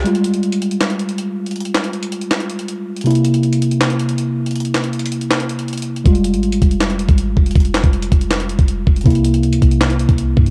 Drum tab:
HH |x-----x-----x-----x-----x-----x-----x-----x-----x-----x-----x-----x-----x-----------------x--x--|x--x--x-----x-----x-----x-----x-----x-----x-----x-----x-----x-----x-----x-----------------x--x--|x--x--x-----x-----x-----x-----x-----x-----x-----x-----x-----x-----x-----x-----------------x--x--|x--x--x-----x-----x-----x---x---x---x-----x-----x-----x-----x-----x-----x--x--x--x--------x-----|
CP |------------------------------------------------x-----------------------------------------------|------------x-----------------------------------x-----------------------------------------------|------------------------------------------------x-----------------------------------------------|------------x-----------------------------------x-----------------------------------------------|
SD |------------------------------------------------o-----------------------------------------------|------------o-----------------------------------o-----------------------------------------------|------------------------------------------------o-----------------------------------------------|------------o-----------------------------------o-----------------------------------------------|
BD |------------------------------------------------------------------------------------------------|------------------------------------------------------------------------------------------------|------------------------------------------------------------------------------------------------|------------------------------------------------------------------------------------------------|

HH |x-----x-----x-----x-----x-----x-----x-----x-----x-----x-----x-----x-----x-----------------x--x--|x--x--x-----x-----x-----x-----x-----x-----x-----x-----x-----x-----x-----x-----------------x--x--|x--x--x-----x-----x-----x-----x-----x-----x-----x-----x-----x-----x-----x-----------------x-----|
CP |------------------------------------------------x-----------------------------------------------|------------x-----------------------------------x-----------------------------------------------|------------------------------------------------x-----------------------------------------------|
SD |------------------------------------------------o-----------------------------------------------|------------o-----------------------------------o-----------------------------------------------|------------------------------------------------o-----------------------------------------------|
BD |o-----------------------------------o-----------------------------o-----------------o-----------|o-----------------o-----------------o-----------------------------o-----------------o-----------|o-----------------------------------o-----------------------------o-----------------o-----------|